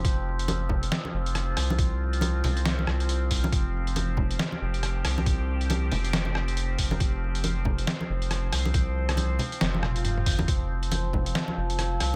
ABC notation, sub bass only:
X:1
M:4/4
L:1/8
Q:"Swing 16ths" 1/4=138
K:Cphr
V:1 name="Sub bass" clef=bass
F,,,4 z F,,,2 C,,- | C,,3 C,,2 C,,3 | F,,,4 z F,,,2 C,,- | C,,3 F,,,4 F,,, |
F,,,4 z F,,,2 C,,- | C,,3 z F,,,3 G,,, | F,,,4 z F,,,2 C,, |]